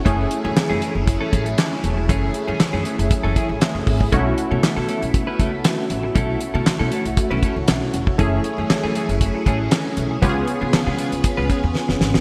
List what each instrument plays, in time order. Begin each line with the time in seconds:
Already playing: string machine C#4 E4
0.05 upright bass F#1, clean electric guitar E3 A3 C#4 G#4, string machine F#3 A3 G#4, analog polysynth A3 C#4 E4 G#4, kick, closed hi-hat
0.31 muted clean electric guitar stroke, closed hi-hat
0.44 upright bass F#2, clean electric guitar E3 A3 C#4 G#4
0.56 muted clean electric guitar stroke, muted upright bass stroke, snare, clap, closed hi-hat
0.70 upright bass F#2, clean electric guitar E3 A3 C#4 G#4
0.82 clean electric guitar E3 A3 C#4 G#4, closed hi-hat
0.95 upright bass F#1, muted clean electric guitar stroke
1.07 muted clean electric guitar stroke, kick, closed hi-hat
1.21 clean electric guitar E3 A3 C#4 A4
1.33 upright bass A1, clean electric guitar E3 A3 C#4 G#4, kick, closed hi-hat
1.46 muted clean electric guitar stroke, closed hi-hat
1.58 muted clean electric guitar stroke, snare, clap, closed hi-hat
1.72 muted clean electric guitar stroke
1.84 upright bass E1, closed hi-hat
1.97 muted clean electric guitar stroke
2.09 upright bass F#1, clean electric guitar E3 A3 C#4 G#4, kick, closed hi-hat
2.34 muted clean electric guitar stroke, closed hi-hat
2.48 upright bass F#2, clean electric guitar E3 A3 C#4 G#4
2.60 muted clean electric guitar stroke, muted upright bass stroke, snare, clap, closed hi-hat
2.73 upright bass F#2, clean electric guitar E3 A3 C#4 G#4
2.85 clean electric guitar E3 A3 C#4 G#4, closed hi-hat
2.98 upright bass F#1, muted clean electric guitar stroke, closed hi-hat
3.10 muted clean electric guitar stroke, kick, closed hi-hat
3.23 upright bass F#1, clean electric guitar E3 A3 C#4 A4
3.36 clean electric guitar E3 A3 C#4 G#4, kick, closed hi-hat
3.49 upright bass A1, muted clean electric guitar stroke
3.61 muted clean electric guitar stroke, snare, clap, closed hi-hat
3.75 upright bass F#1, muted clean electric guitar stroke
3.87 upright bass G#1, kick, open hi-hat
4.00 upright bass A1, muted clean electric guitar stroke, kick
4.12 upright bass B1, clean electric guitar A3 C#4 E4 A4, analog polysynth A3 C#4 D#4 F#4, string machine A3 B3, kick, closed hi-hat
4.19 analog polysynth E4
4.37 muted clean electric guitar stroke, closed hi-hat
4.51 upright bass B2, clean electric guitar A3 C#4 E4 A4
4.63 muted clean electric guitar stroke, muted upright bass stroke, snare, clap, closed hi-hat
4.76 upright bass B2, clean electric guitar A3 C#4 E4 A4
4.88 clean electric guitar A3 C#4 E4 A4, closed hi-hat
5.02 upright bass B1, muted clean electric guitar stroke, closed hi-hat
5.14 muted clean electric guitar stroke, kick, closed hi-hat
5.27 clean electric guitar A3 C#4 E4 B4
5.39 upright bass C#2, clean electric guitar A3 C#4 E4 A4, kick, closed hi-hat
5.53 muted clean electric guitar stroke
5.64 muted clean electric guitar stroke, snare, clap, closed hi-hat
5.78 muted clean electric guitar stroke
5.90 upright bass A1, closed hi-hat
6.03 muted clean electric guitar stroke
6.15 upright bass B1, clean electric guitar A3 C#4 E4 A4, string machine C#4, kick, closed hi-hat
6.40 muted clean electric guitar stroke, closed hi-hat
6.54 upright bass B2, clean electric guitar A3 C#4 E4 A4
6.66 muted clean electric guitar stroke, muted upright bass stroke, snare, clap, closed hi-hat
6.79 upright bass B2, clean electric guitar A3 C#4 E4 A4
6.91 clean electric guitar A3 C#4 E4 A4, closed hi-hat
7.05 upright bass B1, muted clean electric guitar stroke, closed hi-hat
7.17 muted clean electric guitar stroke, kick, closed hi-hat
7.30 upright bass B1, clean electric guitar A3 C#4 E4 B4
7.42 clean electric guitar A3 C#4 E4 A4, kick, closed hi-hat
7.56 upright bass C#2, muted clean electric guitar stroke
7.68 upright bass B1, muted clean electric guitar stroke, snare, clap, closed hi-hat
7.82 muted clean electric guitar stroke
7.94 upright bass E1, closed hi-hat
8.07 muted clean electric guitar stroke, kick
8.18 upright bass F#1, clean electric guitar E3 A3 C#4 G#4, string machine F#3 A3 E4 G#4, analog polysynth A3 C#4 E4 G#4, kick, closed hi-hat
8.44 muted clean electric guitar stroke, closed hi-hat
8.58 upright bass F#2, clean electric guitar E3 A3 C#4 G#4
8.70 muted clean electric guitar stroke, muted upright bass stroke, snare, clap, closed hi-hat
8.83 upright bass F#2, clean electric guitar E3 A3 C#4 G#4
8.95 clean electric guitar E3 A3 C#4 G#4, closed hi-hat
9.09 upright bass F#1, muted clean electric guitar stroke, closed hi-hat
9.21 kick, closed hi-hat
9.35 muted clean electric guitar stroke
9.46 upright bass A1, clean electric guitar E3 A3 C#4 G#4, kick, closed hi-hat
9.60 muted clean electric guitar stroke
9.71 muted clean electric guitar stroke, snare, clap, closed hi-hat
9.85 muted clean electric guitar stroke
9.97 upright bass B1, closed hi-hat
10.11 muted clean electric guitar stroke
10.22 upright bass C#2, string machine C#3 F4 B4, clean electric guitar G#3 B3 F4 G#4, analog polysynth B3 C#4 F4 G4, kick, closed hi-hat
10.29 analog polysynth G#4
10.47 muted clean electric guitar stroke, closed hi-hat
10.61 upright bass C#3, clean electric guitar G#3 B3 F4 G#4
10.73 muted upright bass stroke, snare, clap, closed hi-hat
10.87 upright bass C#3, clean electric guitar G#3 B3 F4 G#4
10.98 clean electric guitar G#3 B3 F4 G#4, closed hi-hat
11.12 upright bass C#2, muted clean electric guitar stroke, closed hi-hat
11.24 muted clean electric guitar stroke, kick, closed hi-hat
11.37 upright bass C#2, clean electric guitar G#3 B3 F4 B4
11.49 clean electric guitar G#3 B3 F4 G#4, kick, closed hi-hat
11.63 upright bass E2, muted clean electric guitar stroke
11.75 muted clean electric guitar stroke, snare
11.88 upright bass F#1, muted clean electric guitar stroke, snare
12.01 upright bass G#1, snare
12.14 upright bass A1, muted clean electric guitar stroke, snare